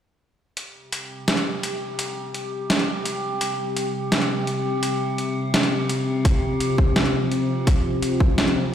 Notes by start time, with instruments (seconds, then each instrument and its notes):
0.57 analog synth pad C4 G4 G5, synth drone G4, closed hi-hat
0.92 closed hi-hat
1.28 snare, closed hi-hat
1.37 closed hi-hat
1.63 closed hi-hat
1.99 closed hi-hat
2.34 closed hi-hat
2.70 snare, closed hi-hat
2.79 closed hi-hat
3.06 closed hi-hat
3.41 closed hi-hat
3.77 closed hi-hat
4.12 snare, closed hi-hat
4.22 closed hi-hat
4.47 closed hi-hat
4.83 closed hi-hat
5.18 closed hi-hat
5.54 snare, closed hi-hat
5.63 closed hi-hat
5.89 closed hi-hat
6.25 analog synth pad F4 C5, kick, closed hi-hat
6.60 closed hi-hat
6.78 kick
6.96 snare, closed hi-hat
7.05 closed hi-hat
7.32 closed hi-hat
7.67 kick, closed hi-hat
8.02 closed hi-hat
8.20 kick
8.38 snare, closed hi-hat
8.48 closed hi-hat